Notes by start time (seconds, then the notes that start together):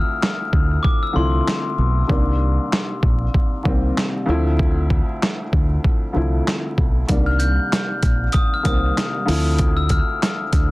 Already playing: D2 F3 A3 C4 E4 F6
0.23 snare, clap
0.53 D2, kick
0.83 D6, kick
1.03 E6
1.13 C2 D2 F3 A3 C4 E4 C6
1.48 snare, clap
1.78 B1
2.08 C2 D#3 G3 A#3 D4, kick
2.73 snare, clap
3.03 A#1, kick
3.34 kick
3.63 C2 D#3 G3 A#3 C4, kick
3.98 snare, clap
4.26 D2 F3 A3 C4 E4
4.59 kick
4.90 kick
5.23 snare, clap
5.53 D2, kick
5.84 kick
6.13 C2 D2 F3 A3 C4 E4
6.48 snare, clap
6.78 B1, kick
7.08 C2 D#3 G3 A#3 D4, kick, closed hi-hat
7.26 F6
7.39 G6, closed hi-hat
7.73 snare, clap, closed hi-hat
8.03 A#1, kick, closed hi-hat
8.32 D#6, kick, closed hi-hat
8.54 F6
8.63 C2 D#3 G3 A#3 C4 D#6, kick, closed hi-hat
8.98 snare, clap, closed hi-hat
9.26 D2 F3 A3 C4 E4, open hi-hat
9.58 kick, closed hi-hat
9.77 E6
9.89 F6, kick, closed hi-hat
10.23 snare, clap, closed hi-hat
10.53 D2, kick, closed hi-hat